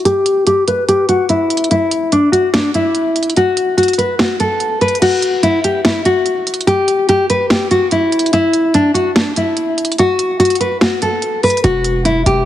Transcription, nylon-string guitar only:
0.05 0.44 G4 loud
0.47 0.63 G4 loud
0.68 0.83 B4 medium
0.88 1.04 G4 medium
1.09 1.24 F#4 medium
1.30 1.68 E4 medium
1.71 2.10 E4 loud
2.12 2.28 D4 medium
2.32 2.48 F#4 medium
2.54 2.69 D4 medium
2.75 3.33 E4 medium
3.37 3.76 F#4 loud
3.77 3.93 F#4 medium
3.98 4.14 B4 medium
4.20 4.35 F#4 medium
4.40 4.79 A4 medium
4.81 4.97 B4 medium
5.02 5.41 F#4 loud
5.43 5.59 E4 medium
5.64 5.80 G4 medium
5.85 6.01 E4 medium
6.06 6.64 F#4 medium
6.67 7.06 G4 loud
7.09 7.25 G4 loud
7.30 7.45 B4 medium
7.51 7.66 G4 medium
7.71 7.87 F#4 medium
7.92 8.31 E4 medium
8.33 8.72 E4 loud
8.74 8.90 D4 medium
8.94 9.10 F#4 medium
9.16 9.31 D4 medium
9.37 9.95 E4 medium
9.99 10.38 F#4 loud
10.40 10.55 F#4 medium
10.61 10.76 B4 medium
10.82 10.97 F#4 medium
11.02 11.41 A4 medium
11.44 11.59 B4 medium
11.64 12.03 F#4 loud
12.05 12.21 E4 medium
12.26 12.42 G4 medium

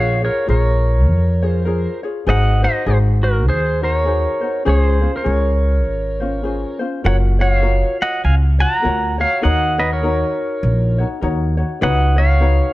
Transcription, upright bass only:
0.00 0.27 A#1 medium
0.49 1.08 A#1 medium
1.08 1.85 F2 medium
2.27 2.65 G#1 medium
2.86 3.47 G#1 medium
3.47 4.25 D#2 medium
4.66 5.05 C#2 medium
5.26 5.86 C#2 medium
5.86 6.63 G#1 medium
7.05 7.82 F#1 medium
8.24 8.63 C#2 medium
8.85 9.23 D2 medium
9.45 10.22 D#2 medium
10.63 11.01 A#1 loud
11.22 11.61 D#2 medium
11.82 12.59 C#2 loud

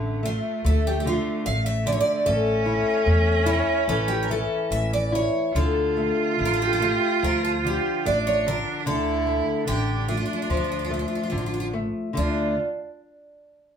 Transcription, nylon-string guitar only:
0.00 0.22 D3 soft
0.23 0.63 A3 medium
0.65 1.45 A3 medium
1.06 1.45 D3 medium
1.46 1.85 A3 medium
1.86 2.25 D3 medium
2.26 3.05 A3 medium
2.66 3.05 E4 medium
3.06 3.46 A3 medium
3.46 3.86 E4 medium
3.89 5.51 E3 medium
4.30 4.70 E4 medium
4.71 5.12 A3 soft
5.12 5.54 E4 medium
5.55 6.38 D3 medium
5.97 6.38 A3 medium
6.39 6.80 D3 medium
6.80 7.22 A3 medium
7.23 8.83 F3 medium
7.64 8.05 D3 medium
8.05 8.46 A3 medium
8.46 8.85 D3 medium
8.86 9.66 D3 medium
9.27 9.66 A3 medium
9.67 10.07 D3 medium
10.08 10.48 A3 medium
10.50 12.12 F3 medium
10.90 11.31 A3 medium
11.31 11.72 D3 medium
11.73 12.14 A3 medium
12.13 12.53 D3 soft
12.13 12.54 A3 medium

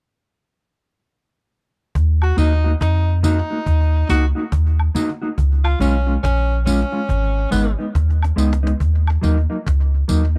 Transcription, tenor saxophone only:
2.23 2.35 F#4 medium
2.38 2.72 D#4 medium
2.81 3.15 D#4 medium
3.24 4.06 D#4 medium
4.10 4.26 F#4 medium
5.64 5.77 F4 medium
5.81 6.15 C#4 medium
6.23 6.58 C#4 loud
6.65 7.47 C#4 medium
7.51 7.73 B3 medium

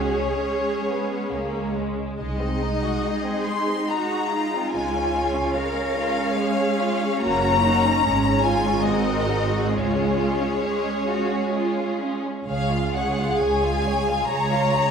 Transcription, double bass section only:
0.00 0.28 C#2 soft
1.31 2.04 C#2 soft
2.19 2.91 C2 soft
4.74 5.42 C#2 soft
7.24 7.91 F#1 soft
8.05 8.73 G#1 medium
8.87 9.59 G#1 medium
9.75 10.49 C#2 soft
12.49 13.31 C#2 medium
13.42 14.21 C#2 soft
14.31 14.91 C#2 soft

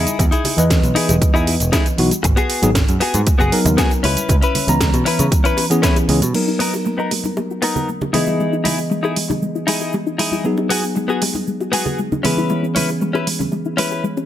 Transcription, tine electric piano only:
0.57 1.95 E3 medium
0.57 1.96 B3 medium
0.57 1.96 B4 medium
0.57 1.96 D#5 medium
1.98 2.09 E3 medium
1.98 2.09 B3 medium
1.98 2.09 D#4 medium
1.98 2.09 F#4 medium
2.62 2.69 F#3 medium
2.62 2.69 B3 medium
2.62 2.69 D#4 medium
2.62 2.70 G#4 medium
3.52 4.02 F#3 medium
3.52 4.02 B3 medium
3.52 4.02 D#4 medium
3.52 4.03 A#4 medium
4.67 5.68 E3 medium
4.67 5.68 B3 medium
4.67 5.68 C#4 medium
4.67 5.69 A#5 medium
5.70 6.06 E3 medium
5.70 6.06 B3 medium
5.70 6.06 C#4 medium
5.70 6.06 G#4 medium
6.08 6.19 E3 medium
6.08 6.19 B3 medium
6.08 6.20 C#4 medium
6.08 6.20 G#4 medium
6.33 8.10 F#3 medium
6.33 8.11 B3 medium
6.33 8.11 D#4 medium
6.33 8.11 A#4 medium
8.13 10.41 E3 medium
8.13 10.42 B3 medium
8.13 10.42 G#4 medium
8.13 10.42 D#5 medium
10.44 12.21 F#3 medium
10.44 12.21 B3 medium
10.44 12.22 D#4 medium
10.44 12.22 G#4 medium
12.24 14.26 E3 medium
12.24 14.26 B3 medium
12.24 14.26 C#4 medium
12.24 14.26 G#4 medium

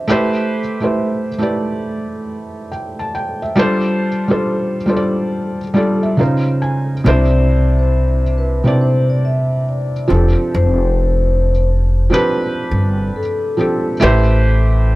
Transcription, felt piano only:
0.00 0.11 F3 medium
0.00 0.12 C4 medium
0.00 0.11 D4 medium
0.00 0.09 G4 medium
0.00 0.10 B4 medium
0.00 0.11 C5 medium
0.08 0.58 A3 loud
0.08 0.59 E4 medium
0.08 0.59 G4 loud
0.08 0.60 B4 loud
0.08 0.60 C5 loud
0.80 1.28 A3 medium
0.80 1.28 E4 medium
0.80 1.29 G4 medium
0.80 1.29 B4 medium
0.80 1.29 C5 medium
1.38 2.68 A3 medium
1.38 2.69 E4 medium
1.38 2.69 G4 medium
1.38 2.70 B4 medium
1.43 2.70 D5 medium
2.71 2.98 G5 medium
2.99 3.13 A5 medium
3.15 3.41 G5 medium
3.42 3.83 E5 medium
3.55 4.06 G3 loud
3.55 4.07 D4 loud
3.55 4.07 F4 loud
3.55 4.07 A4 loud
3.55 4.08 C5 loud
4.28 4.75 G3 medium
4.28 4.76 D4 medium
4.28 4.76 F4 medium
4.28 4.77 A4 medium
4.28 4.77 C5 medium
4.86 5.57 G3 medium
4.86 5.58 D4 medium
4.86 5.58 F4 medium
4.86 5.59 A4 medium
4.86 4.97 C5 medium
4.97 5.63 D5 medium
5.74 6.18 G3 medium
5.74 6.18 D4 medium
5.74 6.18 F4 medium
5.74 6.19 A4 medium
5.74 6.20 D5 medium
6.03 6.17 E5 medium
6.17 6.93 C#3 medium
6.17 6.93 C#4 medium
6.17 6.93 D#4 medium
6.17 6.94 F4 medium
6.17 6.94 C5 medium
6.17 6.59 F5 medium
6.62 7.02 G#5 medium
7.04 8.23 C3 medium
7.04 8.23 C4 medium
7.04 8.24 D4 medium
7.04 8.24 E4 loud
7.04 8.25 C5 loud
8.64 9.92 C3 medium
8.64 9.92 C4 medium
8.64 9.93 D4 medium
8.64 9.93 E4 medium
8.64 9.94 D5 medium
10.08 11.50 F3 medium
10.08 11.51 C4 medium
10.08 11.51 D4 medium
10.08 11.52 G4 medium
10.08 11.52 A4 medium
12.10 13.18 F3 medium
12.10 13.18 C4 medium
12.10 13.19 D4 medium
12.10 13.19 G4 medium
12.10 13.20 B4 loud
13.57 13.93 F3 medium
13.57 13.93 C4 medium
13.57 13.94 D4 medium
13.57 13.94 G4 medium
13.57 13.94 A4 medium
14.00 14.96 A3 loud
14.00 14.96 E4 loud
14.00 14.96 G4 loud
14.00 14.96 B4 loud
14.00 14.96 C5 loud

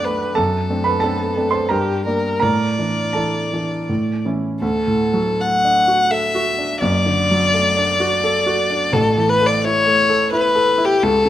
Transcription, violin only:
0.05 0.39 B4 medium
0.38 1.71 A4 medium
1.70 2.05 G4 medium
2.05 2.44 A#4 medium
2.42 4.25 D5 medium
4.62 5.42 A4 medium
5.40 6.12 F#5 medium
6.11 6.79 E5 medium
6.80 8.94 D5 medium
8.93 9.31 A4 medium
9.29 9.48 B4 medium
9.46 9.66 D5 medium
9.64 10.31 C#5 medium
10.32 10.87 B4 medium
10.85 11.05 G4 medium
11.03 11.29 A4 loud

